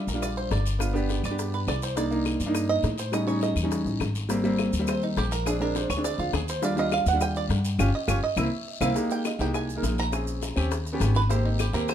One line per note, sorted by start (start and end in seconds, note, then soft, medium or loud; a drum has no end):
0.07 0.48 A#1 medium
0.07 0.22 A#4 medium
0.07 short guiro medium
0.07 maracas medium
0.14 0.55 G3 medium
0.14 0.55 D4 medium
0.14 0.56 F4 medium
0.22 0.37 D5 medium
0.22 high bongo medium
0.22 long guiro medium
0.22 claves medium
0.22 maracas medium
0.37 0.51 C5 medium
0.37 maracas soft
0.51 1.18 G1 medium
0.51 0.79 D5 medium
0.51 high bongo medium
0.51 low bongo medium
0.51 short guiro medium
0.51 maracas soft
0.66 short guiro medium
0.66 maracas medium
0.79 0.90 B3 medium
0.79 0.90 D4 medium
0.79 0.91 F4 medium
0.79 high bongo medium
0.79 claves medium
0.79 maracas medium
0.93 1.20 B3 loud
0.93 1.20 D4 medium
0.93 1.21 G4 loud
0.93 high bongo soft
0.93 maracas soft
1.09 high bongo medium
1.09 short guiro medium
1.09 maracas soft
1.23 1.64 G2 medium
1.23 1.52 D5 medium
1.23 high bongo soft
1.23 short guiro medium
1.23 claves medium
1.23 maracas medium
1.30 1.71 B3 medium
1.30 1.72 D4 medium
1.30 1.72 G4 medium
1.39 high bongo medium
1.39 long guiro medium
1.39 maracas medium
1.53 1.68 B4 medium
1.53 high bongo soft
1.53 maracas soft
1.67 2.35 C2 medium
1.67 1.82 D5 medium
1.67 high bongo medium
1.67 low bongo medium
1.67 short guiro medium
1.67 claves medium
1.67 maracas soft
1.82 1.97 C5 medium
1.82 short guiro medium
1.82 maracas medium
1.96 2.07 A#3 medium
1.96 2.07 D4 medium
1.96 2.07 D#4 medium
1.96 2.24 D5 medium
1.96 high bongo medium
1.96 long guiro medium
1.96 maracas medium
2.11 2.37 A#3 medium
2.11 2.37 D4 medium
2.11 2.37 D#4 medium
2.11 maracas soft
2.25 high bongo medium
2.25 short guiro medium
2.25 claves medium
2.25 maracas soft
2.40 2.81 G2 medium
2.40 short guiro medium
2.40 maracas medium
2.46 2.88 A#3 medium
2.46 2.88 D4 medium
2.46 2.89 D#4 loud
2.54 high bongo medium
2.54 long guiro medium
2.54 claves medium
2.54 maracas medium
2.69 2.97 D#5 loud
2.69 maracas soft
2.83 3.51 A2 medium
2.83 high bongo medium
2.83 low bongo medium
2.83 short guiro medium
2.83 maracas soft
2.98 3.13 C5 medium
2.98 short guiro medium
2.98 maracas medium
3.12 3.23 G3 medium
3.12 3.23 C#4 medium
3.12 3.24 D#4 medium
3.12 3.27 D#5 medium
3.12 high bongo medium
3.12 claves medium
3.12 maracas medium
3.27 3.53 G3 medium
3.27 3.53 C#4 medium
3.27 3.53 D#4 medium
3.27 3.42 C#5 medium
3.27 high bongo soft
3.27 maracas soft
3.41 3.70 D#5 medium
3.41 high bongo medium
3.41 short guiro medium
3.41 maracas soft
3.56 3.83 E2 medium
3.56 high bongo soft
3.56 short guiro medium
3.56 claves medium
3.56 maracas medium
3.63 4.04 G3 medium
3.63 4.05 C#4 medium
3.63 4.05 D#4 medium
3.71 high bongo medium
3.71 long guiro medium
3.71 maracas medium
3.85 3.99 A1 medium
3.85 high bongo soft
3.85 maracas soft
4.00 4.68 G#1 medium
4.00 high bongo medium
4.00 low bongo medium
4.00 short guiro medium
4.00 claves medium
4.00 maracas soft
4.15 short guiro medium
4.15 maracas medium
4.29 4.39 G3 medium
4.29 4.40 A#3 medium
4.29 4.40 C4 loud
4.29 high bongo medium
4.29 long guiro medium
4.29 maracas medium
4.44 4.69 G3 loud
4.44 4.70 A#3 medium
4.44 4.70 C4 loud
4.44 maracas soft
4.58 high bongo medium
4.58 short guiro medium
4.58 claves medium
4.58 maracas soft
4.73 5.14 D#2 medium
4.73 short guiro medium
4.73 maracas medium
4.79 5.21 G3 medium
4.79 5.21 A#3 medium
4.79 5.22 C4 medium
4.87 5.02 C5 medium
4.87 high bongo medium
4.87 long guiro medium
4.87 claves medium
4.87 maracas medium
5.02 5.17 D#4 medium
5.02 maracas soft
5.17 5.84 A#1 medium
5.17 5.32 G4 medium
5.17 high bongo medium
5.17 low bongo medium
5.17 short guiro medium
5.17 maracas soft
5.31 5.46 A#4 loud
5.31 short guiro medium
5.31 maracas medium
5.46 5.56 G#3 medium
5.46 5.56 C4 medium
5.46 5.57 D4 medium
5.46 5.61 G#4 medium
5.46 high bongo medium
5.46 long guiro medium
5.46 claves medium
5.46 maracas medium
5.60 5.86 G#3 medium
5.60 5.86 C4 medium
5.60 5.87 D4 medium
5.60 5.75 A#4 medium
5.60 high bongo soft
5.60 maracas soft
5.75 5.90 C5 medium
5.75 high bongo medium
5.75 short guiro medium
5.75 maracas soft
5.90 6.17 D2 medium
5.90 6.04 C#5 medium
5.90 high bongo soft
5.90 short guiro medium
5.90 claves medium
5.90 maracas medium
5.96 6.38 G#3 medium
5.96 6.38 C4 medium
5.96 6.38 D4 medium
6.04 6.19 D5 medium
6.04 high bongo medium
6.04 long guiro medium
6.04 maracas medium
6.18 6.32 D2 medium
6.18 6.33 F4 medium
6.18 high bongo soft
6.18 maracas soft
6.33 7.01 D#2 medium
6.33 6.48 G#4 medium
6.33 high bongo medium
6.33 low bongo medium
6.33 short guiro medium
6.33 claves medium
6.33 maracas soft
6.48 6.63 C5 medium
6.48 short guiro medium
6.48 maracas medium
6.62 6.73 G3 medium
6.62 6.73 D4 medium
6.62 6.73 F4 loud
6.62 6.78 D5 medium
6.62 high bongo medium
6.62 maracas medium
6.77 7.02 G3 medium
6.77 7.03 D4 medium
6.77 7.03 F4 loud
6.77 6.92 D#5 medium
6.77 maracas soft
6.91 7.07 F5 medium
6.91 high bongo medium
6.91 short guiro medium
6.91 claves medium
6.91 maracas soft
7.06 7.47 D#2 medium
7.06 7.22 F#5 medium
7.06 short guiro medium
7.06 maracas medium
7.13 7.54 G3 medium
7.13 7.55 D4 medium
7.13 7.55 F4 medium
7.21 7.36 G5 loud
7.21 high bongo medium
7.21 long guiro medium
7.21 claves medium
7.21 maracas medium
7.36 7.45 D5 medium
7.36 maracas soft
7.49 7.77 G2 medium
7.49 high bongo medium
7.49 low bongo medium
7.49 short guiro medium
7.49 maracas soft
7.65 short guiro medium
7.65 maracas medium
7.79 7.90 G1 loud
7.79 7.89 C#4 loud
7.79 7.89 F4 loud
7.79 7.89 G4 loud
7.79 low bongo loud
7.79 long guiro loud
7.79 claves loud
7.79 maracas medium
7.95 8.09 D#5 medium
8.08 8.19 G1 medium
8.08 8.17 C#4 medium
8.08 8.17 F4 loud
8.08 8.17 G4 loud
8.08 8.23 C#5 medium
8.08 low bongo medium
8.08 long guiro loud
8.08 claves loud
8.08 maracas medium
8.24 8.38 D#5 medium
8.36 8.48 C2 medium
8.36 8.47 A#3 loud
8.36 8.47 C4 loud
8.36 8.47 E4 medium
8.36 8.79 E5 medium
8.36 low bongo loud
8.36 long guiro medium
8.36 claves loud
8.36 maracas medium
8.81 8.92 C2 medium
8.81 8.91 A#3 loud
8.81 8.91 C4 loud
8.81 8.90 E4 medium
8.81 9.23 F5 loud
8.81 low bongo loud
8.81 claves medium
8.81 maracas loud
8.95 9.26 G#3 medium
8.95 9.26 A#3 medium
8.95 9.27 D#4 medium
8.95 9.27 G4 medium
8.95 high bongo medium
8.95 long guiro medium
8.95 maracas medium
9.10 9.26 G5 medium
9.10 maracas medium
9.25 9.40 D#5 medium
9.25 high bongo medium
9.25 short guiro medium
9.25 claves medium
9.25 maracas medium
9.39 9.80 C2 medium
9.39 9.65 G#3 medium
9.39 9.65 A#3 medium
9.39 9.66 D#4 medium
9.39 9.66 G4 medium
9.39 9.55 G5 loud
9.39 short guiro medium
9.39 maracas soft
9.54 9.96 G#5 medium
9.54 high bongo medium
9.54 long guiro medium
9.54 claves medium
9.54 maracas medium
9.70 maracas soft
9.76 10.02 G#3 medium
9.76 10.02 A#3 medium
9.76 10.02 D#4 medium
9.76 10.03 A#4 medium
9.83 10.51 A#1 medium
9.83 high bongo medium
9.83 low bongo medium
9.83 short guiro medium
9.83 maracas medium
9.98 10.40 A#5 loud
9.98 short guiro medium
9.98 maracas soft
10.12 10.43 C4 medium
10.12 10.44 C#4 medium
10.12 10.44 G#4 medium
10.12 high bongo medium
10.12 long guiro medium
10.12 claves medium
10.12 maracas medium
10.27 maracas medium
10.42 high bongo medium
10.42 short guiro medium
10.42 maracas medium
10.56 10.98 D#2 medium
10.56 10.71 C4 medium
10.56 10.72 C#4 medium
10.56 10.72 G4 loud
10.56 high bongo soft
10.56 short guiro medium
10.56 claves medium
10.56 maracas soft
10.71 high bongo medium
10.71 long guiro medium
10.71 maracas medium
10.86 high bongo soft
10.86 maracas medium
10.93 11.19 B3 medium
10.93 11.19 C#4 medium
10.93 11.20 G4 loud
11.00 11.68 G#1 medium
11.00 high bongo medium
11.00 low bongo medium
11.00 short guiro medium
11.00 claves medium
11.00 maracas medium
11.15 11.30 B4 medium
11.15 short guiro medium
11.15 maracas soft
11.29 11.60 A#3 medium
11.29 11.61 C4 medium
11.29 11.61 G4 loud
11.29 11.45 C5 medium
11.29 high bongo medium
11.29 long guiro medium
11.29 maracas medium
11.46 11.59 D#4 medium
11.59 11.74 G4 medium
11.59 high bongo medium
11.59 short guiro medium
11.59 claves medium
11.59 maracas medium
11.73 11.94 D#2 medium
11.73 11.94 A#3 medium
11.73 11.94 C4 medium
11.73 11.94 G4 medium
11.73 11.88 A#4 medium
11.73 short guiro medium
11.73 maracas soft
11.88 11.94 C5 medium
11.88 high bongo medium
11.88 long guiro medium
11.88 claves medium
11.88 maracas medium